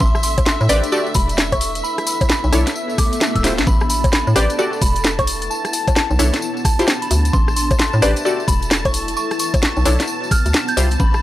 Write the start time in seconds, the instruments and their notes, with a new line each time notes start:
Already playing: ambient pad D4 A4 E5, string machine E5
0.00 fm bass A1, synth bell C6, kick, tambourine
0.15 cross-stick, tambourine
0.23 synth bell C6, open hi-hat, tambourine
0.28 ambient pad B5
0.38 kick, closed hi-hat, tambourine, high bongo
0.46 synth bell C6, snare, tambourine
0.61 fm bass A2, tambourine
0.69 fm bass A1, synth stab G4 B4 C5 D5, open hi-hat, tambourine
0.84 closed hi-hat, tambourine
0.92 ambient pad E4, synth stab F#4 G4 A4 D5, tambourine
1.07 tambourine
1.14 fm bass E1, synth bell B5, kick, open hi-hat, tambourine
1.29 ambient pad B4, closed hi-hat, tambourine
1.38 snare, tambourine
1.52 synth bell C#6, kick, closed hi-hat, tambourine, high bongo
1.61 open hi-hat, tambourine
1.75 closed hi-hat, tambourine
1.84 ambient pad B3, synth bell B5, tambourine
1.98 cross-stick, closed hi-hat, tambourine
2.07 synth bell B5, open hi-hat, tambourine
2.21 kick, closed hi-hat, tambourine, high bongo
2.30 synth bell B5, snare, tambourine
2.44 fm bass B1, tambourine
2.53 fm bass B1, synth stab D4 E4 A4 C#5, cross-stick, open hi-hat, tambourine
2.67 snare, closed hi-hat, tambourine
2.75 ambient pad D4, tambourine, swell
2.90 tambourine
2.98 synth bell D6, kick, cross-stick, open hi-hat, tambourine
3.13 closed hi-hat, tambourine
3.18 ambient pad A4 E5, snare, tambourine
3.35 fm bass D1, synth bell E6, kick, closed hi-hat, tambourine
3.44 synth stab E4 F4 G4 C5, snare, open hi-hat, tambourine
3.58 fm bass A1, snare, closed hi-hat, tambourine
3.67 fm bass A1, string machine A5, synth bell B5, kick, tambourine
3.80 cross-stick, tambourine
3.90 synth bell B5, open hi-hat, tambourine
4.04 kick, closed hi-hat, tambourine, high bongo
4.12 synth bell B5, snare, tambourine
4.27 fm bass A2, tambourine
4.36 fm bass A1, synth stab G4 B4 C5 D5, cross-stick, open hi-hat, tambourine
4.50 closed hi-hat, tambourine
4.59 ambient pad E4, synth stab F#4 G4 A4 D5, tambourine
4.73 tambourine
4.78 fm bass E1, ambient pad F#5, synth bell B5, kick, open hi-hat, tambourine
4.96 closed hi-hat, tambourine
5.04 snare, tambourine
5.19 synth bell C#6, kick, closed hi-hat, tambourine, high bongo
5.27 open hi-hat, tambourine
5.42 closed hi-hat, tambourine
5.50 ambient pad B3, synth bell A5, tambourine
5.65 cross-stick, closed hi-hat, tambourine
5.73 synth bell A5, open hi-hat, tambourine
5.88 kick, closed hi-hat, tambourine, high bongo
5.96 synth bell A5, snare, tambourine
6.11 fm bass B1, tambourine
6.19 fm bass B1, synth stab D4 E4 A4 C#5, open hi-hat, tambourine
6.33 snare, closed hi-hat, tambourine
6.42 ambient pad D4, tambourine
6.57 tambourine
6.65 synth bell A5, kick, cross-stick, open hi-hat, tambourine
6.70 ambient pad A4
6.79 synth stab E4 F4 G4 C5, closed hi-hat, tambourine
6.85 ambient pad E5, snare, tambourine
7.02 synth bell B5, closed hi-hat, tambourine
7.11 fm bass D2, open hi-hat, tambourine
7.25 closed hi-hat, tambourine
7.33 fm bass A1, synth bell C6, kick, tambourine
7.48 cross-stick, tambourine
7.56 synth bell C6, open hi-hat, tambourine
7.71 kick, closed hi-hat, tambourine, high bongo
7.79 synth bell C6, snare, tambourine
7.93 fm bass A2, tambourine
8.02 fm bass A1, synth stab G4 B4 C5 D5, cross-stick, open hi-hat, tambourine
8.16 closed hi-hat, tambourine
8.25 ambient pad E4, synth stab F#4 G4 A4 D5, tambourine
8.40 tambourine
8.48 fm bass E1, ambient pad B4, synth bell B5, kick, open hi-hat, tambourine
8.62 closed hi-hat, tambourine
8.71 snare, tambourine
8.85 synth bell C#6, kick, closed hi-hat, tambourine, high bongo
8.94 open hi-hat, tambourine
9.08 closed hi-hat, tambourine
9.17 ambient pad B3, synth bell C#6, tambourine
9.31 cross-stick, closed hi-hat, tambourine
9.39 synth bell C#6, open hi-hat, tambourine
9.54 kick, closed hi-hat, tambourine, high bongo
9.63 synth bell C#6, snare, tambourine
9.77 fm bass B1, tambourine
9.85 fm bass B1, synth stab D4 E4 A4 C#5, open hi-hat, tambourine
10.00 snare, closed hi-hat, tambourine
10.08 ambient pad D4, tambourine
10.23 ambient pad E5, tambourine
10.31 synth bell F6, kick, cross-stick, open hi-hat, tambourine
10.41 ambient pad A4
10.46 fm bass D2, closed hi-hat, tambourine
10.54 snare, tambourine
10.68 synth bell G6, closed hi-hat, tambourine
10.77 fm bass C2, synth stab E4 F4 G4 C5, open hi-hat, tambourine
10.91 closed hi-hat, tambourine
11.00 fm bass A1, synth bell B5, kick, tambourine
11.14 cross-stick, tambourine